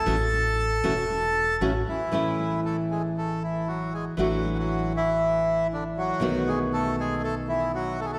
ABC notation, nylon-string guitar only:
X:1
M:4/4
L:1/8
Q:1/4=118
K:A
V:1 name="Nylon-string guitar"
[E,A,CF] z2 [E,A,CF] z2 [E,A,CF] z | [E,A,CE]8 | [E,A,DF]8 | [B,,^D,A,B,F]8 |]